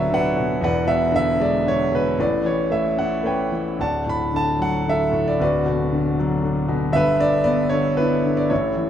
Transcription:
0.00 0.58 D1 medium
0.00 0.57 D2 medium
0.00 0.33 B2 soft
0.00 0.10 D3 medium
0.00 0.60 F#3 medium
0.00 0.63 F#4 medium
0.00 0.14 B4 medium
0.00 0.64 C#5 medium
0.00 0.14 D5 medium
0.00 0.11 E5 medium
0.10 0.60 D3 medium
0.10 0.60 B4 medium
0.10 0.59 D5 medium
0.10 0.48 F#5 loud
0.36 0.61 B2 medium
0.61 2.14 E1 medium
0.61 2.14 E2 medium
0.61 1.36 B4 medium
0.61 1.36 D5 medium
0.61 0.89 F#5 medium
0.87 1.88 B2 medium
0.87 1.11 E5 loud
1.12 1.64 D3 medium
1.16 1.41 E5 loud
1.40 2.16 G#3 medium
1.40 1.65 D5 medium
1.65 2.16 D3 medium
1.65 1.94 C#5 medium
1.91 2.17 B2 medium
1.91 2.18 B4 medium
2.18 3.76 A1 medium
2.18 3.76 A2 medium
2.18 2.94 B4 medium
2.18 2.44 D5 medium
2.45 3.50 E3 soft
2.45 2.72 C#5 medium
2.71 3.22 A3 soft
2.71 2.99 E5 medium
2.97 3.77 C#4 soft
2.97 3.26 F#5 medium
3.23 3.77 A3 soft
3.23 3.76 B4 medium
3.23 3.77 C#5 medium
3.23 3.64 G5 medium
3.52 3.79 E3 soft
3.79 5.35 D1 medium
3.79 5.35 D2 medium
3.79 4.56 D5 medium
3.79 4.56 F#5 medium
3.79 4.08 A5 medium
4.06 5.10 A2 soft
4.06 4.35 B5 medium
4.33 4.85 D3 medium
4.33 4.62 A5 loud
4.59 5.37 F#3 soft
4.59 4.86 F#5 medium
4.86 5.38 D3 soft
4.86 5.38 A4 medium
4.86 5.29 E5 medium
5.12 5.38 A2 medium
5.28 5.40 D5 medium
5.40 6.90 D1 medium
5.40 6.90 D2 medium
5.40 6.16 F#4 medium
5.40 6.16 B4 medium
5.40 6.16 D5 medium
5.65 6.65 B2 medium
5.92 6.41 D3 medium
6.19 6.92 F#3 medium
6.43 6.92 D3 medium
6.68 6.93 B2 medium
6.92 8.46 G1 medium
6.92 8.45 G2 medium
6.92 7.69 B4 medium
6.92 7.20 E5 loud
7.20 7.70 D3 medium
7.20 7.43 D5 loud
7.44 7.96 B3 medium
7.44 7.72 D5 loud
7.69 8.23 D3 medium
7.69 7.98 C#5 medium
7.97 8.49 B3 medium
7.97 8.48 D4 medium
7.97 8.47 E4 medium
7.97 8.38 B4 medium
8.25 8.50 D3 medium
8.37 8.51 D5 medium
8.50 8.90 A1 medium
8.50 8.90 A2 medium
8.50 8.90 E4 medium
8.50 8.90 C#5 medium
8.77 8.90 E3 soft

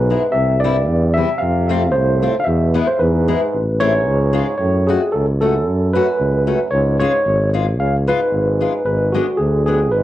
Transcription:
0.00 0.16 B1 loud
0.00 0.28 G#2 medium
0.00 0.35 B4 medium
0.10 0.21 G#3 soft
0.10 0.22 B3 soft
0.10 0.22 E4 medium
0.29 0.58 C3 medium
0.29 0.60 E5 medium
0.34 0.89 C2 medium
0.58 1.10 G2 medium
0.58 1.17 D5 medium
0.64 0.75 G3 medium
0.64 0.75 C4 soft
0.64 0.76 E4 medium
0.88 1.23 E2 loud
1.13 1.37 C3 medium
1.13 1.41 E5 loud
1.17 1.28 G3 medium
1.17 1.29 C4 soft
1.17 1.29 E4 soft
1.37 1.89 C3 medium
1.37 1.95 F5 medium
1.42 1.96 F2 medium
1.69 1.81 A3 medium
1.69 1.81 C4 medium
1.69 1.82 F4 medium
1.91 2.36 A2 medium
1.91 2.36 C5 medium
1.95 2.29 C2 medium
2.22 2.34 A3 soft
2.22 2.34 C4 soft
2.22 2.34 F4 medium
2.38 2.42 D3 medium
2.38 2.47 F5 medium
2.43 2.82 B2 medium
2.43 2.87 E5 medium
2.47 2.81 E2 medium
2.74 2.86 G#3 medium
2.74 2.86 B3 medium
2.74 2.87 E4 medium
2.84 2.95 A2 medium
2.84 3.00 C5 medium
2.96 3.34 E2 loud
2.96 3.61 G#2 medium
2.96 4.30 B4 medium
3.28 3.39 G#3 medium
3.28 3.39 B3 soft
3.28 3.39 E4 medium
3.54 4.08 A1 medium
3.78 4.54 G#2 medium
3.78 3.92 A3 medium
3.78 3.92 C4 medium
3.78 3.92 E4 medium
3.78 4.57 C#5 loud
4.07 4.42 C#2 loud
4.33 4.45 G#3 medium
4.33 4.46 C#4 soft
4.33 4.46 F4 medium
4.58 4.96 F#2 medium
4.58 4.85 A2 medium
4.58 4.88 C#5 medium
4.86 5.11 F2 medium
4.86 5.00 A3 medium
4.86 5.00 C#4 medium
4.86 5.01 F#4 medium
4.86 5.14 G#4 medium
5.12 5.69 C#2 medium
5.12 5.25 F#2 medium
5.12 5.25 A4 medium
5.41 5.90 F#2 medium
5.41 5.53 A3 medium
5.41 5.53 C#4 soft
5.41 5.53 F#4 soft
5.41 5.95 A4 medium
5.67 6.01 F#2 medium
5.94 6.67 F#2 medium
5.94 6.06 A3 medium
5.94 6.06 C#4 medium
5.94 6.06 F#4 medium
5.94 6.67 B4 medium
6.20 6.54 C#2 medium
6.47 6.58 A3 medium
6.47 6.58 C#4 soft
6.47 6.58 F#4 soft
6.71 7.07 C#2 loud
6.71 6.98 G#2 medium
6.71 6.97 C#5 medium
7.00 7.49 G#2 medium
7.00 7.11 G#3 medium
7.00 7.12 C#4 medium
7.00 7.12 F4 medium
7.00 7.49 C#5 medium
7.25 7.79 G#1 medium
7.54 7.64 G#3 medium
7.54 7.65 C#4 soft
7.54 7.65 F4 medium
7.78 8.13 C#2 medium
7.78 7.95 C#3 medium
7.78 7.96 F5 medium
8.07 8.81 G#2 medium
8.07 8.18 G#3 medium
8.07 8.18 C#4 medium
8.07 8.19 F4 medium
8.07 8.84 B4 medium
8.32 8.66 G#1 medium
8.61 8.72 G#3 soft
8.61 8.72 C#4 soft
8.61 8.72 F4 soft
8.85 9.19 G#1 medium
8.85 9.11 G#2 medium
8.85 9.14 B4 medium
9.12 9.36 D2 medium
9.12 9.25 G#3 medium
9.12 9.25 B3 soft
9.12 9.26 D4 medium
9.12 9.39 F#4 medium
9.37 9.64 D2 medium
9.37 9.94 D2 medium
9.37 9.65 G#4 medium
9.66 9.90 F2 medium
9.66 9.78 G#3 soft
9.66 9.78 B3 soft
9.66 9.79 D4 soft
9.66 9.90 G#4 medium
9.91 10.03 G#1 medium
9.91 10.03 G#2 medium
9.91 10.03 B4 medium

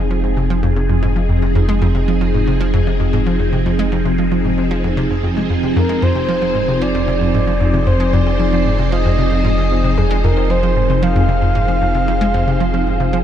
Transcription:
0.00 5.74 F1 medium
0.00 13.24 F3 medium
0.00 13.24 C4 medium
0.00 13.24 D#4 medium
0.00 5.75 G#4 medium
0.00 13.24 G#4 medium
0.11 0.19 F3 medium
0.24 0.32 G#2 medium
0.37 0.49 C3 medium
0.50 0.55 F3 medium
0.63 0.72 F2 loud
0.76 0.81 C3 medium
0.90 0.98 F2 medium
1.03 1.08 G#2 loud
1.16 1.24 F3 medium
1.29 1.42 F2 medium
1.42 1.55 C3 medium
1.55 1.60 F2 loud
1.69 1.74 G#3 loud
1.82 1.90 F2 loud
1.95 2.03 C3 medium
2.08 2.20 F3 medium
2.21 2.30 F3 medium
2.34 2.43 G#2 medium
2.48 2.60 C3 medium
2.61 2.66 F3 loud
2.74 2.82 F2 loud
2.87 2.92 C3 medium
3.00 3.09 F2 medium
3.13 3.18 G#2 loud
3.26 3.35 F3 medium
3.40 3.52 F2 medium
3.53 3.65 C3 medium
3.66 3.71 F2 loud
3.79 3.84 G#3 loud
3.92 4.01 F2 loud
4.05 4.14 C3 medium
4.18 4.30 F3 medium
4.32 4.40 F3 medium
4.45 4.53 G#2 medium
4.58 4.70 C3 medium
4.71 4.76 F3 loud
4.84 4.93 F2 loud
4.97 5.06 C3 loud
5.10 5.22 F2 medium
5.24 5.29 F2 medium
5.37 5.42 G#3 medium
5.50 5.55 F2 medium
5.63 5.72 C3 medium
5.76 13.24 F1 medium
5.76 5.81 F2 loud
5.76 6.05 A#4 medium
5.76 13.24 C5 medium
5.89 5.94 G#3 loud
6.02 6.11 F2 loud
6.02 6.83 C5 medium
6.15 6.24 C3 medium
6.29 6.41 F3 medium
6.42 6.51 F3 medium
6.55 6.64 G#2 medium
6.68 6.81 C3 medium
6.81 6.87 F3 loud
6.81 7.88 D5 loud
6.95 7.03 F2 loud
7.08 7.13 C3 medium
7.21 7.30 F2 medium
7.34 7.39 G#2 loud
7.47 7.56 F3 medium
7.61 7.73 F2 medium
7.74 7.86 C3 medium
7.87 7.92 F2 loud
7.87 8.15 C5 loud
8.00 8.05 G#3 loud
8.13 8.22 F2 loud
8.13 8.92 D5 loud
8.27 8.35 C3 medium
8.40 8.52 F3 medium
8.53 8.61 F3 medium
8.66 8.74 G#2 medium
8.79 8.92 C3 medium
8.92 8.97 F3 loud
8.92 9.99 D#5 loud
9.05 9.14 F2 loud
9.18 9.24 C3 medium
9.32 9.40 F2 medium
9.45 9.50 G#2 loud
9.58 9.66 F3 medium
9.71 9.84 F2 medium
9.84 9.97 C3 medium
9.98 10.03 F2 loud
9.98 10.26 G#4 loud
10.11 10.16 G#3 loud
10.24 10.32 F2 loud
10.24 10.52 A#4 loud
10.37 10.45 C3 medium
10.50 10.62 F3 medium
10.50 11.03 C5 loud
10.63 10.72 F3 medium
10.76 10.85 G#2 medium
10.90 11.02 C3 medium
11.03 11.08 F3 loud
11.03 13.24 F5 loud
11.16 11.24 F2 loud
11.29 11.34 C3 medium
11.42 11.51 F2 medium
11.55 11.60 G#2 loud
11.68 11.77 F3 medium
11.82 11.94 F2 medium
11.95 12.07 C3 medium
12.08 12.13 F2 loud
12.21 12.26 G#3 loud
12.34 12.43 F2 loud
12.47 12.56 C3 medium
12.60 12.73 F3 medium
12.74 12.82 F3 medium
12.87 12.95 G#2 medium
13.00 13.13 C3 medium
13.13 13.18 F3 loud

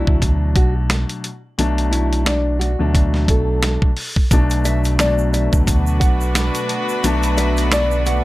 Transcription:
0.00 1.26 B2 medium
0.00 1.26 F#3 medium
0.00 1.27 A3 medium
0.00 1.27 D4 loud
0.00 0.19 E4 medium
0.07 0.57 D2 medium
0.07 kick medium
0.22 kick medium
0.22 closed hi-hat loud
0.56 1.05 B1 loud
0.56 0.73 F#4 medium
0.56 kick loud
0.56 closed hi-hat medium
0.90 snare loud
0.90 snare medium
0.90 closed hi-hat medium
1.09 closed hi-hat medium
1.24 closed hi-hat medium
1.58 2.76 B1 loud
1.58 2.69 B2 medium
1.58 2.69 F#3 medium
1.58 2.69 A3 medium
1.58 2.70 D4 loud
1.58 closed hi-hat loud
1.78 closed hi-hat medium
1.91 2.22 E4 medium
1.91 closed hi-hat medium
2.13 closed hi-hat medium
2.26 2.57 D4 medium
2.26 snare loud
2.26 snare medium
2.26 closed hi-hat medium
2.59 3.24 F#4 medium
2.59 closed hi-hat medium
2.79 3.30 D2 medium
2.79 3.88 B2 medium
2.79 3.88 F#3 medium
2.79 3.88 A3 medium
2.79 3.89 D4 loud
2.95 kick medium
2.95 closed hi-hat loud
3.14 snare soft
3.28 3.78 B1 medium
3.28 3.79 A4 medium
3.28 kick medium
3.28 closed hi-hat medium
3.63 snare loud
3.63 snare medium
3.63 closed hi-hat medium
3.82 kick loud
3.97 open hi-hat soft
4.16 kick medium
4.30 5.48 B1 loud
4.30 4.95 B2 medium
4.30 8.24 D3 medium
4.30 4.95 F#3 medium
4.30 8.24 A3 medium
4.30 4.95 A3 medium
4.30 8.24 B3 medium
4.30 4.96 D4 loud
4.30 kick loud
4.30 closed hi-hat loud
4.30 shaker medium
4.50 closed hi-hat medium
4.50 shaker medium
4.65 4.96 E5 medium
4.65 closed hi-hat medium
4.65 shaker medium
4.84 closed hi-hat medium
4.84 shaker soft
4.98 6.71 B2 medium
4.98 6.72 F#3 medium
4.98 6.72 A3 medium
4.98 6.72 D4 loud
4.98 5.30 D5 medium
4.98 snare loud
4.98 snare medium
4.98 closed hi-hat medium
4.98 shaker medium
5.18 shaker soft
5.33 5.64 E5 medium
5.33 closed hi-hat medium
5.33 shaker soft
5.53 6.03 D2 medium
5.53 kick medium
5.53 shaker medium
5.67 8.24 D4 medium
5.67 8.24 F#4 loud
5.67 8.24 B4 loud
5.67 kick medium
5.67 closed hi-hat loud
5.67 shaker medium
5.87 shaker medium
6.00 6.50 B1 medium
6.00 6.18 F#5 medium
6.00 kick loud
6.00 closed hi-hat medium
6.00 shaker soft
6.21 shaker soft
6.35 snare loud
6.35 snare medium
6.35 closed hi-hat loud
6.35 shaker medium
6.55 closed hi-hat medium
6.55 shaker medium
6.69 closed hi-hat medium
6.89 shaker soft
7.03 8.21 B1 loud
7.03 8.14 B2 medium
7.03 8.14 F#3 loud
7.03 8.15 A3 loud
7.03 8.15 D4 loud
7.03 closed hi-hat loud
7.03 shaker medium
7.23 closed hi-hat medium
7.23 shaker medium
7.37 7.68 E5 medium
7.37 closed hi-hat medium
7.37 shaker medium
7.57 closed hi-hat medium
7.57 shaker soft
7.72 8.03 D5 medium
7.72 snare loud
7.72 snare medium
7.72 closed hi-hat medium
7.72 shaker medium
7.91 shaker soft
8.06 8.24 F#5 medium
8.06 closed hi-hat medium
8.06 shaker soft

